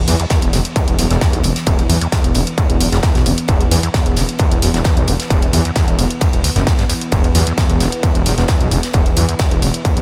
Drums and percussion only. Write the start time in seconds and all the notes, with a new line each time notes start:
0.08 snare, open hi-hat, ride
0.20 closed hi-hat
0.30 kick, snare, closed hi-hat, ride
0.42 closed hi-hat, ride
0.53 snare, open hi-hat, ride
0.65 closed hi-hat
0.76 kick, closed hi-hat, ride
0.88 closed hi-hat
0.98 snare, open hi-hat, ride
1.11 snare, closed hi-hat
1.21 kick, snare, closed hi-hat, ride
1.33 closed hi-hat
1.43 open hi-hat, ride
1.56 snare, closed hi-hat
1.67 kick, closed hi-hat, ride
1.79 closed hi-hat, ride
1.89 open hi-hat, ride
2.01 closed hi-hat
2.12 kick, snare, closed hi-hat, ride
2.24 closed hi-hat
2.34 open hi-hat, ride
2.47 closed hi-hat
2.58 kick, closed hi-hat, ride
2.70 closed hi-hat
2.81 open hi-hat, ride
2.92 snare, closed hi-hat
3.03 kick, snare, closed hi-hat, ride
3.15 snare, closed hi-hat
3.26 open hi-hat, ride
3.38 closed hi-hat
3.48 kick, closed hi-hat, ride
3.61 closed hi-hat
3.71 snare, open hi-hat, ride
3.83 closed hi-hat
3.94 kick, snare, closed hi-hat, ride
4.06 closed hi-hat, ride
4.16 snare, open hi-hat, ride
4.29 closed hi-hat
4.39 kick, closed hi-hat, ride
4.52 closed hi-hat
4.62 snare, open hi-hat, ride
4.74 snare, closed hi-hat
4.84 kick, snare, closed hi-hat, ride
4.97 closed hi-hat
5.07 open hi-hat, ride
5.20 snare, closed hi-hat
5.30 kick, closed hi-hat, ride
5.42 closed hi-hat, ride
5.53 open hi-hat, ride
5.65 closed hi-hat
5.76 kick, snare, closed hi-hat, ride
5.88 closed hi-hat
5.99 open hi-hat, ride
6.11 closed hi-hat
6.21 kick, closed hi-hat, ride
6.33 closed hi-hat
6.44 open hi-hat, ride
6.56 snare, closed hi-hat
6.67 kick, snare, closed hi-hat, ride
6.79 snare, closed hi-hat
6.89 open hi-hat, ride
7.01 closed hi-hat
7.12 kick, closed hi-hat, ride
7.24 closed hi-hat
7.35 snare, open hi-hat, ride
7.47 closed hi-hat
7.58 kick, snare, closed hi-hat, ride
7.70 closed hi-hat, ride
7.80 snare, open hi-hat, ride
7.92 closed hi-hat
8.03 kick, closed hi-hat, ride
8.15 closed hi-hat
8.26 snare, open hi-hat, ride
8.38 snare, closed hi-hat
8.48 kick, snare, closed hi-hat, ride
8.61 closed hi-hat
8.71 open hi-hat, ride
8.83 snare, closed hi-hat
8.93 kick, closed hi-hat, ride
9.06 closed hi-hat, ride
9.16 open hi-hat, ride
9.29 closed hi-hat
9.39 kick, snare, closed hi-hat, ride
9.51 closed hi-hat
9.62 open hi-hat, ride
9.74 closed hi-hat
9.85 kick, closed hi-hat, ride
9.97 closed hi-hat